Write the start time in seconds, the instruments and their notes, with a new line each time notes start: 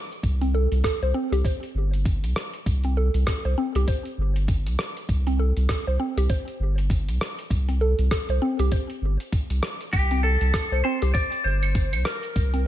0.12 cabasa
0.23 sub bass C2, kick, closed hi-hat, cabasa
0.41 synth pluck C4, closed hi-hat, cabasa
0.54 synth pluck A4
0.71 sub bass C2, closed hi-hat, cabasa
0.84 synth pluck A4, kick, cross-stick, closed hi-hat, cabasa
1.02 sub bass C2, synth pluck C5, cabasa
1.14 synth pluck C4
1.32 sub bass C2, synth pluck G4, closed hi-hat, cabasa
1.45 synth pluck C5, kick, closed hi-hat, cabasa
1.63 closed hi-hat, cabasa
1.75 sub bass G1
1.93 closed hi-hat, cabasa
2.05 kick, closed hi-hat, cabasa
2.22 sub bass C2, closed hi-hat, cabasa
2.36 cross-stick
2.54 closed hi-hat, cabasa
2.66 sub bass C2, kick, closed hi-hat, cabasa
2.84 synth pluck C4, closed hi-hat, cabasa
2.97 synth pluck A4
3.14 sub bass C2, closed hi-hat, cabasa
3.27 synth pluck A4, kick, cross-stick, closed hi-hat, cabasa
3.45 sub bass C2, synth pluck C5, cabasa
3.58 synth pluck C4
3.75 sub bass C2, synth pluck G4, closed hi-hat, cabasa
3.88 synth pluck C5, kick, closed hi-hat, cabasa
4.05 closed hi-hat, cabasa
4.18 sub bass G1
4.36 closed hi-hat, cabasa
4.48 kick, closed hi-hat, cabasa
4.66 sub bass C2, closed hi-hat, cabasa
4.79 cross-stick
4.97 closed hi-hat, cabasa
5.09 sub bass C2, kick, closed hi-hat, cabasa
5.27 synth pluck C4, closed hi-hat, cabasa
5.39 synth pluck A4
5.57 sub bass C2, closed hi-hat, cabasa
5.69 synth pluck A4, kick, cross-stick, closed hi-hat, cabasa
5.87 sub bass C2, synth pluck C5, cabasa
6.00 synth pluck C4
6.17 sub bass C2, synth pluck G4, closed hi-hat, cabasa
6.30 synth pluck C5, kick, closed hi-hat, cabasa
6.48 closed hi-hat, cabasa
6.60 sub bass G1
6.78 closed hi-hat, cabasa
6.90 kick, closed hi-hat, cabasa
7.08 sub bass C2, closed hi-hat, cabasa
7.21 cross-stick
7.39 closed hi-hat, cabasa
7.50 sub bass C2, kick, closed hi-hat, cabasa
7.68 synth pluck C4, closed hi-hat, cabasa
7.81 synth pluck A4
7.98 sub bass C2, closed hi-hat, cabasa
8.11 synth pluck A4, kick, cross-stick, closed hi-hat, cabasa
8.29 sub bass C2, synth pluck C5, closed hi-hat, cabasa
8.42 synth pluck C4
8.59 sub bass C2, synth pluck G4, closed hi-hat, cabasa
8.72 synth pluck C5, kick, closed hi-hat, cabasa
8.90 closed hi-hat, cabasa
9.02 sub bass G1
9.20 closed hi-hat, cabasa
9.32 kick, closed hi-hat, cabasa
9.50 sub bass C2, closed hi-hat, cabasa
9.63 cross-stick
9.81 closed hi-hat, cabasa
9.93 sub bass C2, electric slide guitar G4, kick, closed hi-hat, cabasa
10.11 synth pluck C4, closed hi-hat, cabasa
10.23 electric slide guitar A4, synth pluck A4
10.41 sub bass C2, closed hi-hat, cabasa
10.54 synth pluck A4, kick, cross-stick, closed hi-hat, cabasa
10.71 sub bass C2, synth pluck C5, cabasa
10.84 synth pluck C4, electric slide guitar C5
11.02 sub bass C2, synth pluck G4, closed hi-hat, cabasa
11.14 synth pluck C5, electric slide guitar D5, kick, closed hi-hat, cabasa
11.32 closed hi-hat, cabasa
11.44 sub bass G1, electric slide guitar C5
11.63 closed hi-hat, cabasa, claves
11.75 kick, closed hi-hat, cabasa
11.93 sub bass C2, closed hi-hat, cabasa, claves
12.05 electric slide guitar A#4, cross-stick
12.23 closed hi-hat, cabasa
12.36 sub bass C2, kick, closed hi-hat, cabasa
12.54 synth pluck C4, closed hi-hat, cabasa